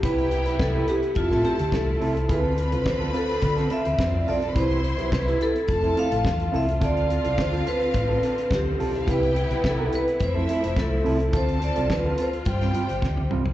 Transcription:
0.03 C2 C3 B3 E4 G4 B4 G5, kick, closed hi-hat
0.18 closed hi-hat
0.31 muted clean electric guitar stroke, closed hi-hat
0.46 B1 E4 G4 B4, closed hi-hat
0.59 C2 A4, kick, snare
0.74 E4 G4 B4
0.87 E4 G4 B4, closed hi-hat
1.02 muted clean electric guitar stroke, closed hi-hat
1.15 F1 A3 E4 F4 A4 A5, muted clean electric guitar stroke, kick, closed hi-hat
1.30 A1 C4 E4 A4, snare
1.44 C4 E4 G4 A4, closed hi-hat
1.59 D2, muted clean electric guitar stroke, closed hi-hat
1.72 C2 A4, muted clean electric guitar stroke, kick, snare
1.87 muted clean electric guitar stroke
2.00 C2 C4 E4 A4, open hi-hat
2.15 muted clean electric guitar stroke, closed hi-hat
2.28 D2 D3 B3 C4 E4 G#4 B4 B5, kick, closed hi-hat
2.39 C4 F4 A4
2.57 muted clean electric guitar stroke, closed hi-hat
2.72 C2 C4 F4 A4, closed hi-hat
2.86 D2 C5, muted clean electric guitar stroke, kick, snare
3.00 C4 F4 A4
3.13 C4 F4 A4, closed hi-hat
3.29 muted clean electric guitar stroke, closed hi-hat
3.42 D3, muted clean electric guitar stroke, kick, closed hi-hat
3.56 C4 F4 A4, snare, closed hi-hat
3.70 C4 F4 A4 E5, closed hi-hat
3.85 D2, muted clean electric guitar stroke, closed hi-hat
3.99 F2, muted clean electric guitar stroke, kick, snare
4.06 C4 C5
4.14 D4 D5, muted clean electric guitar stroke
4.21 E4 E5
4.26 B1 C4 F4 A4 D5 F5, open hi-hat
4.34 G4 G5
4.41 A4 A5, muted clean electric guitar stroke, closed hi-hat
4.48 B4 B5
4.55 C2 B2 C3 E4 G4 B4 C5 C6, kick, closed hi-hat
4.71 closed hi-hat
4.83 muted clean electric guitar stroke, closed hi-hat
4.98 B1 E4 G4 B4, closed hi-hat
5.12 C2 B4, kick, snare
5.26 E4 G4 B4, closed hi-hat
5.40 E4 G4 A4 B4, closed hi-hat
5.55 muted clean electric guitar stroke, closed hi-hat
5.68 F1 F3 A3 F4 A4 A5, muted clean electric guitar stroke, kick, closed hi-hat
5.83 C4 E4 A4, closed hi-hat
5.96 C4 E4 A4 F5, closed hi-hat
6.11 A1, muted clean electric guitar stroke, closed hi-hat
6.24 E2, muted clean electric guitar stroke, kick, snare
6.39 muted clean electric guitar stroke, closed hi-hat
6.52 C2 C4 E4 A4 E5, open hi-hat
6.68 muted clean electric guitar stroke, closed hi-hat
6.80 D2 D3 C4 F4 A4 F5, kick, closed hi-hat
6.84 D5
6.97 closed hi-hat
7.09 muted clean electric guitar stroke, closed hi-hat
7.24 C2 C4 F4 A4, closed hi-hat
7.37 D2 C5, muted clean electric guitar stroke, kick, snare
7.52 C4 F4 A4, closed hi-hat
7.65 C4 F4 A4 B4, closed hi-hat
7.80 muted clean electric guitar stroke, closed hi-hat
7.94 A1, muted clean electric guitar stroke, kick, closed hi-hat
8.09 C4 F4 A4
8.22 C4 F4 A4, closed hi-hat
8.38 muted clean electric guitar stroke, closed hi-hat
8.51 D2 G4, muted clean electric guitar stroke, kick, snare
8.66 A3 A4, muted clean electric guitar stroke
8.73 B3 B4
8.78 B1 C4 F4 A4 C5, open hi-hat
8.87 D4 D5
8.94 E4 E5, muted clean electric guitar stroke, closed hi-hat
9.01 F4 F5
9.07 C2 C3 B3 E4 G4 B4 G5, kick, closed hi-hat
9.11 B4
9.23 closed hi-hat
9.36 muted clean electric guitar stroke, closed hi-hat
9.50 B1 E4 G4 B4, closed hi-hat
9.64 C2 A4, kick, snare
9.79 E4 G4 B4
9.92 E4 G4 B4, closed hi-hat
10.07 muted clean electric guitar stroke, closed hi-hat
10.20 F2 F3 A3 E4 E5, muted clean electric guitar stroke, kick, closed hi-hat
10.24 C5
10.35 C4 E4 A4
10.48 C4 E4 A4, closed hi-hat
10.63 F1, muted clean electric guitar stroke, closed hi-hat
10.76 C2 A4, muted clean electric guitar stroke, kick, snare
10.91 muted clean electric guitar stroke
11.04 C2 C4 E4 A4, open hi-hat
11.20 muted clean electric guitar stroke, closed hi-hat
11.32 D2 D3 C4 F4 A4 A5, kick, closed hi-hat
11.37 C5
11.48 closed hi-hat
11.61 D5, muted clean electric guitar stroke, closed hi-hat
11.76 C2 C4 F4 A4, closed hi-hat
11.90 D2 B4, kick, snare
12.04 C4 F4 A4
12.18 C4 F4 A4 C5, closed hi-hat
12.32 muted clean electric guitar stroke, closed hi-hat
12.45 G2 C3 G3 G4 G5, muted clean electric guitar stroke, kick, closed hi-hat
12.61 G3 C4 F4, snare, closed hi-hat
12.74 G3 C4 F4, closed hi-hat
12.89 G1, closed hi-hat
13.02 D2, muted clean electric guitar stroke, kick, snare
13.17 muted clean electric guitar stroke, high tom
13.30 C2 G3 C4 F4, mid tom
13.46 muted clean electric guitar stroke, floor tom

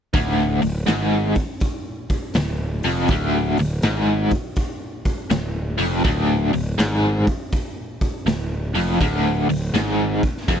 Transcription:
0.14 D1 D2, kick, open hi-hat
0.62 D1 D2, open hi-hat
0.87 G#1 G#2, snare, open hi-hat
1.35 kick, open hi-hat
1.60 kick, open hi-hat
2.10 kick, open hi-hat
2.34 D1 D2, snare, open hi-hat
2.83 F1 F2, open hi-hat
3.08 D1 D2, kick, open hi-hat
3.57 D1 D2, open hi-hat
3.82 G#1 G#2, snare, open hi-hat
4.31 kick, open hi-hat
4.56 kick, open hi-hat
5.05 kick, open hi-hat
5.30 D1 D2, snare, open hi-hat
5.78 F1 F2, open hi-hat
6.04 D1 D2, kick, open hi-hat
6.53 D1 D2, open hi-hat
6.77 G#1 G#2, snare, open hi-hat
7.27 kick, open hi-hat
7.52 kick, open hi-hat
8.01 kick, open hi-hat
8.26 D1 D2, snare, open hi-hat
8.74 F1 F2, open hi-hat
9.00 D1 D2, kick, open hi-hat
9.49 D1 D2, open hi-hat
9.74 G#1 G#2, snare, open hi-hat
10.23 kick, open hi-hat
10.37 snare
10.48 F1 F2, kick, open hi-hat

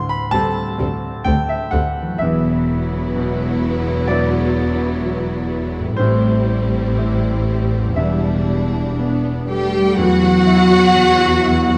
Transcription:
Already playing: D2 A2 D3 G3 C4 A4 B5 C6
0.09 B5
0.31 D2 G3 C4 A4 A5
0.78 D2 G3 C4 A4
1.24 D2 G3 C4 A4 G5
1.49 E5
1.71 D2 G3 C4 A4 F#5
2.01 E3
2.06 F#3
2.11 B3
2.15 E2 E4 E5
2.20 E1 E2 F#3 B3
3.15 B2
4.08 F#3 B3 E4 D5
5.79 A2
5.83 G3
5.88 C4
5.92 E4
5.96 A1 A2 G3 C4 E4 C5
6.98 C4 E4
7.78 E2
7.82 G3
7.91 D4
7.96 E1 E2 G3 D4 E4 E5
8.99 B3 D4
9.47 G3 A3 G4 G5
9.96 E2 F#3 F#4 F#5
10.00 F#4
10.21 B2 F#4
10.45 F#3 E4
10.70 E4 F#4
10.94 F#3 F#4
11.18 E4 F#4
11.42 E4 E5
11.65 F#4 F#5

